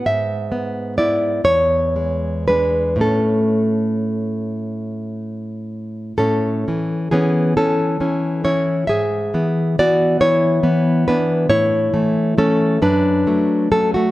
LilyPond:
\new Staff \with { instrumentName = "Nylon-string guitar" } { \time 6/8 \key a \major \tempo 4. = 44 << { e''4 d''8 cis''4 b'8 | a'4. r4. | <cis' a'>4 <b gis'>8 <cis' a'>4 <e' cis''>8 | <gis' e''>4 <fis' d''>8 <e' cis''>4 <d' b'>8 |
<e' cis''>4 <cis' a'>8 <d' b'>4 <cis' a'>16 <a fis'>16 | } \\ { gis,8 b8 <b e'>8 e,8 gis8 <gis d'>8 | <a, a cis'>2. | a,8 <e cis'>8 <e cis'>8 e8 <e cis'>8 <e cis'>8 | gis,8 <e b>8 <e b>8 <e b>8 <e b>8 <e b>8 |
a,8 <e a>8 <e a>8 fis,8 <fis a>8 <fis a>8 | } >> }